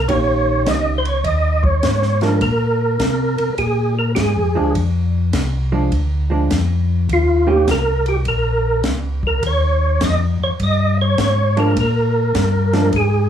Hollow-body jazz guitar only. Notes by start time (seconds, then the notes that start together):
0.09 D#3 A#3 C#4 G4
2.22 F3 G#3 D4
4.55 F3 G#3 D4
5.72 F3 G#3 D4
6.30 F3 G#3 D4
7.47 D#3 A#3 C#4 G4
11.57 F3 G#3 D4
12.73 F3 G#3 D4